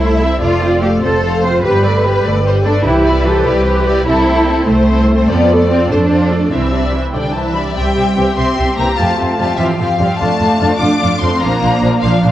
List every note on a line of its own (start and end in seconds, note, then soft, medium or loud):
0.00 0.34 C2 medium
0.00 0.19 A3 soft
0.00 0.41 E4 medium
0.00 0.19 A4 soft
0.00 0.20 C5 soft
0.00 0.21 E5 soft
0.19 0.41 C4 soft
0.19 0.41 E4 soft
0.19 0.42 C5 soft
0.19 0.40 E5 medium
0.41 0.95 F1 soft
0.41 0.60 A3 soft
0.41 0.82 F4 medium
0.41 0.60 A4 soft
0.41 1.01 D5 medium
0.41 0.61 F5 soft
0.61 0.82 C4 soft
0.61 0.82 F4 soft
0.61 0.82 C5 soft
0.81 1.02 A3 soft
0.81 0.91 G4 medium
0.81 1.02 A4 soft
0.81 1.03 F5 soft
1.01 1.56 F1 medium
1.01 1.23 C4 soft
1.01 1.23 F4 soft
1.01 1.42 A4 medium
1.01 1.22 C5 soft
1.01 1.62 C5 medium
1.23 1.42 A3 soft
1.23 1.42 A4 soft
1.23 1.42 F5 soft
1.42 1.64 C4 soft
1.42 1.64 F4 soft
1.42 1.63 C5 soft
1.42 1.63 C5 medium
1.62 2.17 G1 soft
1.62 1.83 G3 soft
1.62 1.83 G4 soft
1.62 1.82 B4 soft
1.62 1.84 B4 medium
1.62 2.24 B4 medium
1.83 2.05 A3 soft
1.83 2.04 A4 soft
1.83 2.04 D5 soft
1.83 2.04 D5 medium
2.03 2.24 G3 soft
2.03 2.24 G4 soft
2.03 2.24 B4 soft
2.03 2.24 B4 medium
2.24 2.78 G1 medium
2.24 2.44 A3 soft
2.24 2.44 A4 soft
2.24 2.44 D5 soft
2.24 2.46 D5 medium
2.42 2.63 G3 soft
2.42 2.63 G4 soft
2.42 2.62 B4 soft
2.47 2.54 C5 soft
2.64 2.85 A3 soft
2.64 2.84 D4 medium
2.64 2.85 A4 soft
2.64 4.05 B4 medium
2.64 2.85 D5 soft
2.84 3.38 C2 medium
2.84 3.04 E3 medium
2.84 3.26 E4 medium
2.84 3.04 G4 soft
2.84 3.03 C5 soft
3.04 3.26 G3 soft
3.04 3.26 E4 soft
3.04 3.25 D5 soft
3.26 3.47 E3 soft
3.26 3.47 G4 soft
3.26 3.46 A4 medium
3.26 3.46 C5 soft
3.45 4.00 C2 medium
3.45 3.66 G3 soft
3.45 3.66 E4 soft
3.45 3.86 G4 medium
3.45 3.67 D5 soft
3.64 3.85 E3 soft
3.64 3.85 G4 soft
3.64 3.84 C5 soft
3.86 4.07 G3 soft
3.86 4.07 E4 soft
3.86 4.07 G4 medium
3.86 4.07 D5 soft
4.06 4.61 C2 medium
4.06 4.26 C4 soft
4.06 4.67 E4 medium
4.06 4.26 E4 medium
4.06 4.26 A4 soft
4.06 4.68 A4 medium
4.28 4.48 A3 soft
4.28 4.46 C4 soft
4.28 4.48 C5 soft
4.48 4.67 C4 soft
4.48 4.68 E4 soft
4.48 4.68 A4 soft
4.67 5.22 C2 medium
4.67 4.88 A3 soft
4.67 5.28 A3 medium
4.67 4.89 C4 soft
4.67 5.27 C5 medium
4.67 4.88 C5 soft
4.90 5.08 C4 soft
4.90 5.08 E4 soft
4.90 5.08 A4 soft
5.08 5.30 A3 soft
5.08 5.29 C4 soft
5.08 5.29 C5 soft
5.29 5.83 F2 medium
5.29 5.70 B3 medium
5.29 5.49 C4 soft
5.29 5.49 F4 medium
5.29 5.48 A4 soft
5.29 5.90 D5 medium
5.51 5.71 A3 soft
5.51 5.71 A4 soft
5.51 5.71 C5 soft
5.70 5.91 C4 soft
5.70 5.91 C4 medium
5.70 5.91 F4 soft
5.70 5.91 A4 soft
5.90 6.46 F2 medium
5.90 6.11 A3 soft
5.90 6.51 D4 medium
5.90 6.11 A4 soft
5.90 5.99 C5 medium
5.90 6.12 C5 soft
6.11 6.30 C4 soft
6.11 6.31 F4 soft
6.11 6.31 A4 soft
6.11 6.31 C5 soft
6.31 6.52 A3 soft
6.31 6.52 A4 soft
6.31 6.52 C5 soft
6.31 6.52 D5 soft
6.51 7.07 C2 soft
6.51 6.72 E3 soft
6.51 7.13 C4 medium
6.51 6.71 E4 soft
6.51 6.72 C5 soft
6.51 7.11 E5 soft
6.72 6.93 G3 soft
6.72 6.93 D4 soft
6.72 6.94 D5 soft
6.93 7.15 E3 soft
6.93 7.15 E4 soft
6.93 7.14 C5 soft
7.13 7.70 C2 soft
7.13 7.34 D3 soft
7.13 7.35 G3 soft
7.13 7.35 D4 soft
7.13 7.35 D5 soft
7.13 7.33 G5 soft
7.34 7.54 E3 soft
7.34 7.76 E3 soft
7.34 7.54 E4 soft
7.34 7.54 C5 soft
7.34 7.76 E5 soft
7.34 7.55 A5 soft
7.55 7.76 G3 soft
7.55 7.76 D4 soft
7.55 7.77 D5 soft
7.55 7.63 B5 soft
7.75 7.85 C2 soft
7.75 8.36 G3 medium
7.75 7.93 C4 soft
7.75 7.94 G4 soft
7.75 7.95 G4 soft
7.75 7.94 E5 soft
7.75 8.37 G5 medium
7.95 8.06 C2 soft
7.95 8.15 C4 soft
7.95 8.16 G4 soft
7.95 8.15 G4 soft
7.95 8.15 E5 soft
8.16 8.27 C2 soft
8.16 8.24 E3 soft
8.16 8.35 C4 soft
8.16 8.25 C4 soft
8.16 8.36 G4 soft
8.16 8.35 G4 soft
8.16 8.36 E5 soft
8.36 8.46 C2 soft
8.36 8.55 C4 soft
8.36 8.77 C4 medium
8.36 8.55 G4 soft
8.36 8.56 G4 soft
8.36 8.56 E5 soft
8.36 8.77 C6 medium
8.56 8.67 C2 soft
8.56 8.75 C4 soft
8.56 8.75 G4 soft
8.56 8.75 E5 soft
8.76 8.87 C2 soft
8.76 8.85 A#3 soft
8.76 8.96 C4 soft
8.76 8.86 C4 soft
8.76 8.97 G4 soft
8.76 8.95 G4 soft
8.76 8.97 E5 soft
8.76 8.97 A#5 medium
8.80 8.86 E3 soft
8.96 9.08 F2 soft
8.96 9.57 A3 medium
8.96 9.16 C4 soft
8.96 9.16 F4 soft
8.96 9.16 G4 soft
8.96 9.17 F5 soft
8.96 9.58 A5 medium
9.17 9.28 F2 soft
9.17 9.37 C4 soft
9.17 9.37 F4 soft
9.17 9.36 G4 soft
9.17 9.37 F5 soft
9.37 9.47 F2 soft
9.37 9.46 G3 soft
9.37 9.56 C4 soft
9.37 9.46 C4 soft
9.37 9.57 F4 soft
9.37 9.57 G4 soft
9.37 9.57 F5 soft
9.56 9.66 F2 soft
9.56 9.79 E3 medium
9.56 9.78 C4 soft
9.56 9.78 F4 soft
9.56 9.79 G4 soft
9.56 9.64 E5 medium
9.56 9.79 F5 soft
9.76 9.87 F2 soft
9.76 10.19 F3 soft
9.76 9.99 C4 soft
9.76 9.99 F4 soft
9.76 9.97 G4 soft
9.76 10.18 F5 medium
9.76 9.98 F5 soft
9.99 10.07 F2 soft
9.99 10.06 G3 soft
9.99 10.07 C4 medium
9.99 10.20 C4 soft
9.99 10.20 F4 soft
9.99 10.19 G4 soft
9.99 10.18 F5 soft
10.16 10.39 D4 soft
10.16 10.37 F4 soft
10.16 10.38 F5 soft
10.16 10.79 A5 medium
10.20 10.29 F2 soft
10.20 10.39 A3 soft
10.20 10.80 A3 medium
10.38 10.48 F2 soft
10.38 10.58 A3 soft
10.38 10.59 D4 soft
10.38 10.58 F4 soft
10.38 10.58 F5 soft
10.59 10.68 F2 soft
10.59 10.69 F3 soft
10.59 10.79 A3 soft
10.59 10.78 D4 soft
10.59 10.69 D4 soft
10.59 10.77 F4 soft
10.59 10.77 F5 soft
10.78 10.89 F2 medium
10.78 10.98 A3 soft
10.78 10.99 D4 soft
10.78 11.21 D4 medium
10.78 10.98 F4 soft
10.78 10.98 F5 soft
10.78 11.19 D6 medium
10.99 11.10 F2 medium
10.99 11.20 A3 soft
10.99 11.20 D4 soft
10.99 11.19 F4 soft
10.99 11.18 F5 soft
11.20 11.30 F2 soft
11.20 11.28 F3 medium
11.20 11.41 A3 soft
11.20 11.42 C4 medium
11.20 11.39 D4 soft
11.20 11.29 D4 soft
11.20 11.39 F4 soft
11.20 11.39 F5 soft
11.20 11.41 C6 medium
11.40 11.50 A#1 soft
11.40 11.61 F3 soft
11.40 12.03 A#3 medium
11.40 11.61 D4 soft
11.40 11.61 F4 soft
11.40 11.61 F5 soft
11.40 12.02 A#5 medium
11.62 11.70 A#1 soft
11.62 11.81 F3 soft
11.62 11.82 D4 soft
11.62 11.81 F4 soft
11.62 11.81 F5 soft
11.81 11.91 A#1 soft
11.81 11.89 F3 soft
11.81 12.00 F3 soft
11.81 11.89 D4 medium
11.81 12.00 D4 soft
11.81 12.00 F4 soft
11.81 12.01 F5 soft
12.01 12.11 A#1 soft
12.01 12.21 F3 soft
12.01 12.24 F3 medium
12.01 12.21 D4 medium
12.01 12.22 F4 soft
12.01 12.22 F5 medium
12.23 12.32 A#1 medium
12.23 12.32 F3 soft
12.23 12.32 D4 soft
12.23 12.32 F4 soft
12.23 12.32 F5 soft